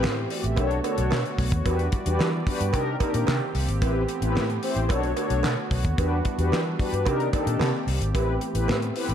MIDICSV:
0, 0, Header, 1, 5, 480
1, 0, Start_track
1, 0, Tempo, 540541
1, 1471, Time_signature, 4, 2, 24, 8
1, 8120, End_track
2, 0, Start_track
2, 0, Title_t, "Analog polysynth"
2, 0, Program_c, 0, 90
2, 0, Note_on_c, 0, 60, 92
2, 33, Note_on_c, 0, 72, 72
2, 38, Note_on_c, 0, 64, 63
2, 96, Note_off_c, 0, 60, 0
2, 260, Note_off_c, 0, 72, 0
2, 262, Note_off_c, 0, 64, 0
2, 275, Note_on_c, 0, 74, 82
2, 280, Note_on_c, 0, 66, 64
2, 387, Note_off_c, 0, 74, 0
2, 390, Note_off_c, 0, 66, 0
2, 393, Note_on_c, 0, 76, 72
2, 399, Note_on_c, 0, 67, 59
2, 511, Note_on_c, 0, 62, 89
2, 514, Note_on_c, 0, 66, 87
2, 516, Note_on_c, 0, 69, 95
2, 519, Note_on_c, 0, 73, 99
2, 620, Note_off_c, 0, 76, 0
2, 623, Note_off_c, 0, 67, 0
2, 703, Note_off_c, 0, 62, 0
2, 704, Note_off_c, 0, 66, 0
2, 706, Note_off_c, 0, 69, 0
2, 707, Note_off_c, 0, 73, 0
2, 751, Note_on_c, 0, 62, 81
2, 754, Note_on_c, 0, 66, 85
2, 754, Note_on_c, 0, 69, 78
2, 759, Note_on_c, 0, 73, 89
2, 1062, Note_off_c, 0, 62, 0
2, 1063, Note_off_c, 0, 66, 0
2, 1064, Note_off_c, 0, 69, 0
2, 1066, Note_off_c, 0, 73, 0
2, 1350, Note_on_c, 0, 69, 85
2, 1358, Note_on_c, 0, 73, 91
2, 1413, Note_off_c, 0, 69, 0
2, 1417, Note_off_c, 0, 73, 0
2, 1473, Note_on_c, 0, 62, 90
2, 1474, Note_on_c, 0, 66, 78
2, 1476, Note_on_c, 0, 67, 74
2, 1480, Note_on_c, 0, 71, 89
2, 1659, Note_off_c, 0, 62, 0
2, 1659, Note_off_c, 0, 66, 0
2, 1660, Note_off_c, 0, 67, 0
2, 1662, Note_off_c, 0, 71, 0
2, 1831, Note_on_c, 0, 62, 95
2, 1836, Note_on_c, 0, 66, 84
2, 1837, Note_on_c, 0, 67, 81
2, 1840, Note_on_c, 0, 71, 97
2, 2018, Note_off_c, 0, 62, 0
2, 2020, Note_off_c, 0, 66, 0
2, 2021, Note_off_c, 0, 67, 0
2, 2022, Note_off_c, 0, 71, 0
2, 2190, Note_on_c, 0, 62, 82
2, 2193, Note_on_c, 0, 66, 74
2, 2196, Note_on_c, 0, 67, 85
2, 2199, Note_on_c, 0, 71, 93
2, 2419, Note_off_c, 0, 62, 0
2, 2423, Note_off_c, 0, 67, 0
2, 2429, Note_on_c, 0, 62, 101
2, 2432, Note_off_c, 0, 66, 0
2, 2432, Note_on_c, 0, 63, 87
2, 2434, Note_on_c, 0, 67, 89
2, 2435, Note_off_c, 0, 71, 0
2, 2436, Note_on_c, 0, 70, 117
2, 2622, Note_off_c, 0, 62, 0
2, 2624, Note_off_c, 0, 63, 0
2, 2625, Note_off_c, 0, 67, 0
2, 2626, Note_off_c, 0, 70, 0
2, 2671, Note_on_c, 0, 62, 80
2, 2673, Note_on_c, 0, 63, 82
2, 2676, Note_on_c, 0, 67, 79
2, 2679, Note_on_c, 0, 70, 100
2, 2982, Note_off_c, 0, 62, 0
2, 2983, Note_off_c, 0, 63, 0
2, 2984, Note_off_c, 0, 67, 0
2, 2986, Note_off_c, 0, 70, 0
2, 3270, Note_on_c, 0, 67, 82
2, 3277, Note_on_c, 0, 70, 80
2, 3333, Note_off_c, 0, 67, 0
2, 3336, Note_off_c, 0, 70, 0
2, 3389, Note_on_c, 0, 60, 83
2, 3391, Note_on_c, 0, 64, 74
2, 3393, Note_on_c, 0, 67, 70
2, 3396, Note_on_c, 0, 71, 96
2, 3577, Note_off_c, 0, 60, 0
2, 3577, Note_off_c, 0, 64, 0
2, 3579, Note_off_c, 0, 67, 0
2, 3580, Note_off_c, 0, 71, 0
2, 3749, Note_on_c, 0, 60, 99
2, 3752, Note_on_c, 0, 64, 88
2, 3753, Note_on_c, 0, 67, 84
2, 3756, Note_on_c, 0, 71, 109
2, 3937, Note_off_c, 0, 60, 0
2, 3938, Note_off_c, 0, 64, 0
2, 3939, Note_off_c, 0, 67, 0
2, 3940, Note_off_c, 0, 71, 0
2, 4110, Note_on_c, 0, 60, 97
2, 4112, Note_on_c, 0, 64, 78
2, 4115, Note_on_c, 0, 67, 81
2, 4117, Note_on_c, 0, 72, 98
2, 4350, Note_on_c, 0, 62, 93
2, 4351, Note_off_c, 0, 60, 0
2, 4352, Note_off_c, 0, 64, 0
2, 4353, Note_off_c, 0, 67, 0
2, 4354, Note_off_c, 0, 72, 0
2, 4354, Note_on_c, 0, 66, 97
2, 4356, Note_on_c, 0, 69, 92
2, 4359, Note_on_c, 0, 73, 106
2, 4542, Note_off_c, 0, 62, 0
2, 4545, Note_off_c, 0, 66, 0
2, 4545, Note_off_c, 0, 69, 0
2, 4547, Note_off_c, 0, 73, 0
2, 4592, Note_on_c, 0, 62, 97
2, 4593, Note_on_c, 0, 66, 78
2, 4595, Note_on_c, 0, 69, 86
2, 4598, Note_on_c, 0, 73, 97
2, 4902, Note_off_c, 0, 62, 0
2, 4903, Note_off_c, 0, 66, 0
2, 4904, Note_off_c, 0, 69, 0
2, 4905, Note_off_c, 0, 73, 0
2, 5191, Note_on_c, 0, 69, 81
2, 5197, Note_on_c, 0, 73, 90
2, 5253, Note_off_c, 0, 69, 0
2, 5256, Note_off_c, 0, 73, 0
2, 5310, Note_on_c, 0, 62, 92
2, 5312, Note_on_c, 0, 66, 77
2, 5314, Note_on_c, 0, 67, 81
2, 5317, Note_on_c, 0, 71, 88
2, 5497, Note_off_c, 0, 62, 0
2, 5498, Note_off_c, 0, 66, 0
2, 5499, Note_off_c, 0, 67, 0
2, 5500, Note_off_c, 0, 71, 0
2, 5671, Note_on_c, 0, 62, 93
2, 5674, Note_on_c, 0, 66, 84
2, 5676, Note_on_c, 0, 67, 88
2, 5677, Note_on_c, 0, 71, 101
2, 5858, Note_off_c, 0, 62, 0
2, 5859, Note_off_c, 0, 66, 0
2, 5860, Note_off_c, 0, 67, 0
2, 5861, Note_off_c, 0, 71, 0
2, 6031, Note_on_c, 0, 62, 88
2, 6035, Note_on_c, 0, 66, 80
2, 6037, Note_on_c, 0, 67, 77
2, 6040, Note_on_c, 0, 71, 98
2, 6261, Note_off_c, 0, 62, 0
2, 6267, Note_off_c, 0, 67, 0
2, 6272, Note_on_c, 0, 62, 95
2, 6273, Note_off_c, 0, 66, 0
2, 6273, Note_on_c, 0, 63, 92
2, 6275, Note_off_c, 0, 71, 0
2, 6278, Note_on_c, 0, 67, 89
2, 6279, Note_on_c, 0, 70, 104
2, 6463, Note_off_c, 0, 62, 0
2, 6464, Note_off_c, 0, 63, 0
2, 6467, Note_off_c, 0, 67, 0
2, 6467, Note_off_c, 0, 70, 0
2, 6512, Note_on_c, 0, 62, 92
2, 6514, Note_on_c, 0, 63, 80
2, 6518, Note_on_c, 0, 67, 77
2, 6519, Note_on_c, 0, 69, 99
2, 6822, Note_off_c, 0, 62, 0
2, 6823, Note_off_c, 0, 63, 0
2, 6825, Note_off_c, 0, 67, 0
2, 6826, Note_off_c, 0, 69, 0
2, 7114, Note_on_c, 0, 67, 92
2, 7121, Note_on_c, 0, 72, 90
2, 7175, Note_off_c, 0, 67, 0
2, 7178, Note_off_c, 0, 72, 0
2, 7231, Note_on_c, 0, 60, 83
2, 7232, Note_on_c, 0, 64, 75
2, 7235, Note_on_c, 0, 67, 72
2, 7237, Note_on_c, 0, 71, 98
2, 7418, Note_off_c, 0, 60, 0
2, 7418, Note_off_c, 0, 64, 0
2, 7419, Note_off_c, 0, 67, 0
2, 7421, Note_off_c, 0, 71, 0
2, 7591, Note_on_c, 0, 60, 89
2, 7594, Note_on_c, 0, 64, 76
2, 7595, Note_on_c, 0, 67, 85
2, 7598, Note_on_c, 0, 71, 109
2, 7777, Note_off_c, 0, 60, 0
2, 7779, Note_off_c, 0, 64, 0
2, 7780, Note_off_c, 0, 67, 0
2, 7781, Note_off_c, 0, 71, 0
2, 7951, Note_on_c, 0, 60, 93
2, 7953, Note_on_c, 0, 64, 89
2, 7955, Note_on_c, 0, 67, 81
2, 7958, Note_on_c, 0, 71, 105
2, 8120, Note_off_c, 0, 60, 0
2, 8120, Note_off_c, 0, 64, 0
2, 8120, Note_off_c, 0, 67, 0
2, 8120, Note_off_c, 0, 71, 0
2, 8120, End_track
3, 0, Start_track
3, 0, Title_t, "Analog synth pad"
3, 0, Program_c, 1, 89
3, 0, Note_on_c, 1, 52, 68
3, 0, Note_on_c, 1, 57, 60
3, 0, Note_on_c, 1, 59, 62
3, 0, Note_on_c, 1, 60, 61
3, 0, Note_on_c, 1, 67, 72
3, 501, Note_off_c, 1, 52, 0
3, 502, Note_off_c, 1, 60, 0
3, 502, Note_off_c, 1, 67, 0
3, 511, Note_on_c, 1, 66, 89
3, 512, Note_on_c, 1, 50, 82
3, 512, Note_on_c, 1, 73, 74
3, 1453, Note_off_c, 1, 57, 0
3, 1462, Note_off_c, 1, 50, 0
3, 1462, Note_off_c, 1, 73, 0
3, 1467, Note_on_c, 1, 52, 69
3, 1467, Note_on_c, 1, 74, 68
3, 1471, Note_on_c, 1, 55, 64
3, 2403, Note_off_c, 1, 59, 0
3, 2412, Note_off_c, 1, 66, 0
3, 2420, Note_off_c, 1, 52, 0
3, 2421, Note_off_c, 1, 55, 0
3, 2428, Note_on_c, 1, 58, 61
3, 2429, Note_on_c, 1, 51, 71
3, 2429, Note_on_c, 1, 67, 85
3, 2431, Note_on_c, 1, 60, 67
3, 3370, Note_off_c, 1, 74, 0
3, 3380, Note_off_c, 1, 58, 0
3, 3381, Note_off_c, 1, 51, 0
3, 3387, Note_on_c, 1, 59, 59
3, 3390, Note_on_c, 1, 57, 58
3, 3391, Note_on_c, 1, 52, 72
3, 4331, Note_off_c, 1, 67, 0
3, 4332, Note_off_c, 1, 60, 0
3, 4340, Note_off_c, 1, 59, 0
3, 4341, Note_off_c, 1, 52, 0
3, 4353, Note_on_c, 1, 66, 93
3, 4354, Note_on_c, 1, 50, 76
3, 4354, Note_on_c, 1, 59, 68
3, 4354, Note_on_c, 1, 73, 63
3, 5291, Note_off_c, 1, 57, 0
3, 5303, Note_off_c, 1, 50, 0
3, 5303, Note_off_c, 1, 73, 0
3, 5318, Note_on_c, 1, 62, 57
3, 5320, Note_on_c, 1, 55, 61
3, 5321, Note_on_c, 1, 52, 70
3, 6253, Note_off_c, 1, 59, 0
3, 6253, Note_off_c, 1, 66, 0
3, 6265, Note_off_c, 1, 62, 0
3, 6266, Note_off_c, 1, 52, 0
3, 6266, Note_off_c, 1, 55, 0
3, 6272, Note_on_c, 1, 51, 69
3, 6272, Note_on_c, 1, 60, 77
3, 6272, Note_on_c, 1, 67, 88
3, 6273, Note_on_c, 1, 58, 67
3, 6273, Note_on_c, 1, 74, 72
3, 7222, Note_off_c, 1, 51, 0
3, 7222, Note_off_c, 1, 74, 0
3, 7223, Note_off_c, 1, 58, 0
3, 7233, Note_on_c, 1, 52, 70
3, 7233, Note_on_c, 1, 57, 64
3, 7235, Note_on_c, 1, 59, 67
3, 8120, Note_off_c, 1, 52, 0
3, 8120, Note_off_c, 1, 57, 0
3, 8120, Note_off_c, 1, 59, 0
3, 8120, Note_off_c, 1, 60, 0
3, 8120, Note_off_c, 1, 67, 0
3, 8120, End_track
4, 0, Start_track
4, 0, Title_t, "Fingered electric bass"
4, 0, Program_c, 2, 33
4, 30, Note_on_c, 2, 45, 103
4, 224, Note_off_c, 2, 45, 0
4, 389, Note_on_c, 2, 33, 82
4, 509, Note_off_c, 2, 33, 0
4, 509, Note_on_c, 2, 35, 99
4, 702, Note_off_c, 2, 35, 0
4, 872, Note_on_c, 2, 35, 89
4, 968, Note_off_c, 2, 35, 0
4, 992, Note_on_c, 2, 47, 86
4, 1088, Note_off_c, 2, 47, 0
4, 1229, Note_on_c, 2, 35, 94
4, 1326, Note_off_c, 2, 35, 0
4, 1350, Note_on_c, 2, 39, 97
4, 1447, Note_off_c, 2, 39, 0
4, 1469, Note_on_c, 2, 40, 119
4, 1663, Note_off_c, 2, 40, 0
4, 1831, Note_on_c, 2, 40, 101
4, 1927, Note_off_c, 2, 40, 0
4, 1953, Note_on_c, 2, 52, 105
4, 2145, Note_off_c, 2, 52, 0
4, 2314, Note_on_c, 2, 43, 78
4, 2429, Note_off_c, 2, 43, 0
4, 2429, Note_on_c, 2, 48, 110
4, 2623, Note_off_c, 2, 48, 0
4, 2792, Note_on_c, 2, 46, 89
4, 2888, Note_off_c, 2, 46, 0
4, 2912, Note_on_c, 2, 48, 103
4, 3008, Note_off_c, 2, 48, 0
4, 3150, Note_on_c, 2, 36, 84
4, 3247, Note_off_c, 2, 36, 0
4, 3270, Note_on_c, 2, 32, 85
4, 3367, Note_off_c, 2, 32, 0
4, 3390, Note_on_c, 2, 33, 127
4, 3584, Note_off_c, 2, 33, 0
4, 3744, Note_on_c, 2, 33, 93
4, 3867, Note_on_c, 2, 45, 101
4, 3880, Note_off_c, 2, 33, 0
4, 4061, Note_off_c, 2, 45, 0
4, 4228, Note_on_c, 2, 33, 89
4, 4351, Note_off_c, 2, 33, 0
4, 4351, Note_on_c, 2, 35, 110
4, 4544, Note_off_c, 2, 35, 0
4, 4709, Note_on_c, 2, 35, 92
4, 4806, Note_off_c, 2, 35, 0
4, 4828, Note_on_c, 2, 47, 98
4, 4926, Note_off_c, 2, 47, 0
4, 5069, Note_on_c, 2, 35, 94
4, 5166, Note_off_c, 2, 35, 0
4, 5192, Note_on_c, 2, 39, 88
4, 5288, Note_off_c, 2, 39, 0
4, 5312, Note_on_c, 2, 40, 110
4, 5505, Note_off_c, 2, 40, 0
4, 5669, Note_on_c, 2, 40, 109
4, 5767, Note_off_c, 2, 40, 0
4, 5789, Note_on_c, 2, 52, 115
4, 5983, Note_off_c, 2, 52, 0
4, 6151, Note_on_c, 2, 43, 67
4, 6273, Note_off_c, 2, 43, 0
4, 6273, Note_on_c, 2, 48, 112
4, 6465, Note_off_c, 2, 48, 0
4, 6630, Note_on_c, 2, 46, 89
4, 6727, Note_off_c, 2, 46, 0
4, 6749, Note_on_c, 2, 48, 97
4, 6846, Note_off_c, 2, 48, 0
4, 6989, Note_on_c, 2, 36, 84
4, 7086, Note_off_c, 2, 36, 0
4, 7109, Note_on_c, 2, 32, 98
4, 7206, Note_off_c, 2, 32, 0
4, 7233, Note_on_c, 2, 33, 127
4, 7425, Note_off_c, 2, 33, 0
4, 7591, Note_on_c, 2, 33, 94
4, 7708, Note_on_c, 2, 45, 103
4, 7722, Note_off_c, 2, 33, 0
4, 7902, Note_off_c, 2, 45, 0
4, 8070, Note_on_c, 2, 33, 83
4, 8120, Note_off_c, 2, 33, 0
4, 8120, End_track
5, 0, Start_track
5, 0, Title_t, "Drums"
5, 26, Note_on_c, 9, 56, 75
5, 36, Note_on_c, 9, 38, 108
5, 43, Note_on_c, 9, 39, 90
5, 115, Note_off_c, 9, 56, 0
5, 125, Note_off_c, 9, 38, 0
5, 132, Note_off_c, 9, 39, 0
5, 270, Note_on_c, 9, 46, 92
5, 359, Note_off_c, 9, 46, 0
5, 393, Note_on_c, 9, 42, 55
5, 481, Note_off_c, 9, 42, 0
5, 501, Note_on_c, 9, 56, 73
5, 510, Note_on_c, 9, 36, 117
5, 511, Note_on_c, 9, 42, 80
5, 590, Note_off_c, 9, 56, 0
5, 599, Note_off_c, 9, 36, 0
5, 600, Note_off_c, 9, 42, 0
5, 628, Note_on_c, 9, 42, 36
5, 717, Note_off_c, 9, 42, 0
5, 747, Note_on_c, 9, 56, 85
5, 749, Note_on_c, 9, 42, 77
5, 836, Note_off_c, 9, 56, 0
5, 838, Note_off_c, 9, 42, 0
5, 868, Note_on_c, 9, 42, 59
5, 957, Note_off_c, 9, 42, 0
5, 982, Note_on_c, 9, 56, 78
5, 994, Note_on_c, 9, 38, 127
5, 1001, Note_on_c, 9, 39, 92
5, 1071, Note_off_c, 9, 56, 0
5, 1083, Note_off_c, 9, 38, 0
5, 1090, Note_off_c, 9, 39, 0
5, 1115, Note_on_c, 9, 42, 34
5, 1204, Note_off_c, 9, 42, 0
5, 1230, Note_on_c, 9, 36, 94
5, 1230, Note_on_c, 9, 46, 87
5, 1319, Note_off_c, 9, 36, 0
5, 1319, Note_off_c, 9, 46, 0
5, 1350, Note_on_c, 9, 36, 106
5, 1353, Note_on_c, 9, 42, 60
5, 1439, Note_off_c, 9, 36, 0
5, 1442, Note_off_c, 9, 42, 0
5, 1471, Note_on_c, 9, 36, 111
5, 1471, Note_on_c, 9, 42, 90
5, 1472, Note_on_c, 9, 56, 69
5, 1560, Note_off_c, 9, 36, 0
5, 1560, Note_off_c, 9, 42, 0
5, 1561, Note_off_c, 9, 56, 0
5, 1591, Note_on_c, 9, 42, 37
5, 1680, Note_off_c, 9, 42, 0
5, 1706, Note_on_c, 9, 42, 81
5, 1711, Note_on_c, 9, 36, 100
5, 1795, Note_off_c, 9, 42, 0
5, 1800, Note_off_c, 9, 36, 0
5, 1829, Note_on_c, 9, 42, 65
5, 1918, Note_off_c, 9, 42, 0
5, 1946, Note_on_c, 9, 56, 77
5, 1958, Note_on_c, 9, 38, 108
5, 1964, Note_on_c, 9, 39, 96
5, 2035, Note_off_c, 9, 56, 0
5, 2047, Note_off_c, 9, 38, 0
5, 2053, Note_off_c, 9, 39, 0
5, 2191, Note_on_c, 9, 36, 93
5, 2191, Note_on_c, 9, 46, 92
5, 2279, Note_off_c, 9, 36, 0
5, 2280, Note_off_c, 9, 46, 0
5, 2315, Note_on_c, 9, 42, 64
5, 2403, Note_off_c, 9, 42, 0
5, 2422, Note_on_c, 9, 56, 69
5, 2430, Note_on_c, 9, 36, 105
5, 2432, Note_on_c, 9, 42, 96
5, 2511, Note_off_c, 9, 56, 0
5, 2519, Note_off_c, 9, 36, 0
5, 2521, Note_off_c, 9, 42, 0
5, 2666, Note_on_c, 9, 56, 85
5, 2668, Note_on_c, 9, 36, 103
5, 2668, Note_on_c, 9, 42, 85
5, 2754, Note_off_c, 9, 56, 0
5, 2757, Note_off_c, 9, 36, 0
5, 2757, Note_off_c, 9, 42, 0
5, 2789, Note_on_c, 9, 42, 61
5, 2878, Note_off_c, 9, 42, 0
5, 2902, Note_on_c, 9, 56, 83
5, 2914, Note_on_c, 9, 38, 124
5, 2920, Note_on_c, 9, 39, 108
5, 2991, Note_off_c, 9, 56, 0
5, 3002, Note_off_c, 9, 38, 0
5, 3009, Note_off_c, 9, 39, 0
5, 3150, Note_on_c, 9, 46, 81
5, 3239, Note_off_c, 9, 46, 0
5, 3274, Note_on_c, 9, 42, 60
5, 3362, Note_off_c, 9, 42, 0
5, 3391, Note_on_c, 9, 36, 115
5, 3391, Note_on_c, 9, 42, 85
5, 3392, Note_on_c, 9, 56, 74
5, 3479, Note_off_c, 9, 42, 0
5, 3480, Note_off_c, 9, 36, 0
5, 3480, Note_off_c, 9, 56, 0
5, 3628, Note_on_c, 9, 42, 72
5, 3717, Note_off_c, 9, 42, 0
5, 3748, Note_on_c, 9, 42, 59
5, 3837, Note_off_c, 9, 42, 0
5, 3867, Note_on_c, 9, 56, 65
5, 3878, Note_on_c, 9, 38, 111
5, 3884, Note_on_c, 9, 39, 91
5, 3956, Note_off_c, 9, 56, 0
5, 3966, Note_off_c, 9, 38, 0
5, 3973, Note_off_c, 9, 39, 0
5, 3994, Note_on_c, 9, 42, 37
5, 4082, Note_off_c, 9, 42, 0
5, 4109, Note_on_c, 9, 46, 82
5, 4198, Note_off_c, 9, 46, 0
5, 4233, Note_on_c, 9, 42, 58
5, 4321, Note_off_c, 9, 42, 0
5, 4342, Note_on_c, 9, 56, 78
5, 4351, Note_on_c, 9, 36, 117
5, 4353, Note_on_c, 9, 42, 96
5, 4431, Note_off_c, 9, 56, 0
5, 4440, Note_off_c, 9, 36, 0
5, 4442, Note_off_c, 9, 42, 0
5, 4470, Note_on_c, 9, 42, 39
5, 4559, Note_off_c, 9, 42, 0
5, 4586, Note_on_c, 9, 56, 76
5, 4589, Note_on_c, 9, 42, 76
5, 4675, Note_off_c, 9, 56, 0
5, 4678, Note_off_c, 9, 42, 0
5, 4709, Note_on_c, 9, 42, 59
5, 4798, Note_off_c, 9, 42, 0
5, 4822, Note_on_c, 9, 56, 87
5, 4833, Note_on_c, 9, 38, 121
5, 4840, Note_on_c, 9, 39, 97
5, 4910, Note_off_c, 9, 56, 0
5, 4922, Note_off_c, 9, 38, 0
5, 4928, Note_off_c, 9, 39, 0
5, 5070, Note_on_c, 9, 46, 83
5, 5071, Note_on_c, 9, 36, 101
5, 5158, Note_off_c, 9, 46, 0
5, 5160, Note_off_c, 9, 36, 0
5, 5192, Note_on_c, 9, 36, 101
5, 5195, Note_on_c, 9, 42, 58
5, 5281, Note_off_c, 9, 36, 0
5, 5284, Note_off_c, 9, 42, 0
5, 5312, Note_on_c, 9, 42, 85
5, 5313, Note_on_c, 9, 36, 127
5, 5315, Note_on_c, 9, 56, 66
5, 5401, Note_off_c, 9, 36, 0
5, 5401, Note_off_c, 9, 42, 0
5, 5403, Note_off_c, 9, 56, 0
5, 5549, Note_on_c, 9, 42, 79
5, 5553, Note_on_c, 9, 36, 89
5, 5638, Note_off_c, 9, 42, 0
5, 5642, Note_off_c, 9, 36, 0
5, 5671, Note_on_c, 9, 42, 56
5, 5760, Note_off_c, 9, 42, 0
5, 5792, Note_on_c, 9, 56, 67
5, 5801, Note_on_c, 9, 38, 110
5, 5807, Note_on_c, 9, 39, 94
5, 5880, Note_off_c, 9, 56, 0
5, 5889, Note_off_c, 9, 38, 0
5, 5896, Note_off_c, 9, 39, 0
5, 6034, Note_on_c, 9, 36, 96
5, 6036, Note_on_c, 9, 46, 80
5, 6122, Note_off_c, 9, 36, 0
5, 6125, Note_off_c, 9, 46, 0
5, 6160, Note_on_c, 9, 42, 59
5, 6248, Note_off_c, 9, 42, 0
5, 6265, Note_on_c, 9, 56, 79
5, 6274, Note_on_c, 9, 36, 108
5, 6278, Note_on_c, 9, 42, 85
5, 6354, Note_off_c, 9, 56, 0
5, 6362, Note_off_c, 9, 36, 0
5, 6367, Note_off_c, 9, 42, 0
5, 6395, Note_on_c, 9, 42, 35
5, 6483, Note_off_c, 9, 42, 0
5, 6510, Note_on_c, 9, 56, 78
5, 6512, Note_on_c, 9, 36, 104
5, 6514, Note_on_c, 9, 42, 81
5, 6599, Note_off_c, 9, 56, 0
5, 6601, Note_off_c, 9, 36, 0
5, 6603, Note_off_c, 9, 42, 0
5, 6633, Note_on_c, 9, 42, 58
5, 6722, Note_off_c, 9, 42, 0
5, 6744, Note_on_c, 9, 56, 80
5, 6760, Note_on_c, 9, 38, 127
5, 6766, Note_on_c, 9, 39, 94
5, 6833, Note_off_c, 9, 56, 0
5, 6848, Note_off_c, 9, 38, 0
5, 6855, Note_off_c, 9, 39, 0
5, 6995, Note_on_c, 9, 46, 76
5, 7083, Note_off_c, 9, 46, 0
5, 7118, Note_on_c, 9, 42, 59
5, 7207, Note_off_c, 9, 42, 0
5, 7234, Note_on_c, 9, 36, 114
5, 7234, Note_on_c, 9, 56, 76
5, 7236, Note_on_c, 9, 42, 97
5, 7323, Note_off_c, 9, 36, 0
5, 7323, Note_off_c, 9, 56, 0
5, 7324, Note_off_c, 9, 42, 0
5, 7471, Note_on_c, 9, 42, 68
5, 7559, Note_off_c, 9, 42, 0
5, 7592, Note_on_c, 9, 42, 65
5, 7680, Note_off_c, 9, 42, 0
5, 7709, Note_on_c, 9, 56, 75
5, 7721, Note_on_c, 9, 38, 112
5, 7728, Note_on_c, 9, 39, 87
5, 7798, Note_off_c, 9, 56, 0
5, 7810, Note_off_c, 9, 38, 0
5, 7817, Note_off_c, 9, 39, 0
5, 7835, Note_on_c, 9, 42, 41
5, 7924, Note_off_c, 9, 42, 0
5, 7953, Note_on_c, 9, 46, 87
5, 8042, Note_off_c, 9, 46, 0
5, 8076, Note_on_c, 9, 42, 59
5, 8120, Note_off_c, 9, 42, 0
5, 8120, End_track
0, 0, End_of_file